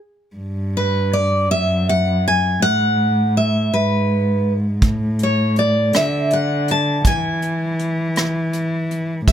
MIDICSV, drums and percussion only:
0, 0, Header, 1, 2, 480
1, 0, Start_track
1, 0, Tempo, 742574
1, 237, Time_signature, 6, 3, 24, 8
1, 6025, End_track
2, 0, Start_track
2, 0, Title_t, "Drums"
2, 3113, Note_on_c, 9, 42, 55
2, 3116, Note_on_c, 9, 36, 73
2, 3178, Note_off_c, 9, 42, 0
2, 3181, Note_off_c, 9, 36, 0
2, 3353, Note_on_c, 9, 42, 45
2, 3418, Note_off_c, 9, 42, 0
2, 3592, Note_on_c, 9, 42, 39
2, 3657, Note_off_c, 9, 42, 0
2, 3833, Note_on_c, 9, 42, 55
2, 3844, Note_on_c, 9, 37, 79
2, 3898, Note_off_c, 9, 42, 0
2, 3909, Note_off_c, 9, 37, 0
2, 4075, Note_on_c, 9, 42, 46
2, 4139, Note_off_c, 9, 42, 0
2, 4317, Note_on_c, 9, 42, 43
2, 4381, Note_off_c, 9, 42, 0
2, 4555, Note_on_c, 9, 36, 80
2, 4556, Note_on_c, 9, 42, 64
2, 4620, Note_off_c, 9, 36, 0
2, 4621, Note_off_c, 9, 42, 0
2, 4796, Note_on_c, 9, 42, 45
2, 4861, Note_off_c, 9, 42, 0
2, 5037, Note_on_c, 9, 42, 41
2, 5102, Note_off_c, 9, 42, 0
2, 5273, Note_on_c, 9, 42, 55
2, 5284, Note_on_c, 9, 37, 69
2, 5337, Note_off_c, 9, 42, 0
2, 5348, Note_off_c, 9, 37, 0
2, 5514, Note_on_c, 9, 42, 46
2, 5579, Note_off_c, 9, 42, 0
2, 5758, Note_on_c, 9, 42, 46
2, 5822, Note_off_c, 9, 42, 0
2, 5995, Note_on_c, 9, 42, 58
2, 5996, Note_on_c, 9, 36, 85
2, 6025, Note_off_c, 9, 36, 0
2, 6025, Note_off_c, 9, 42, 0
2, 6025, End_track
0, 0, End_of_file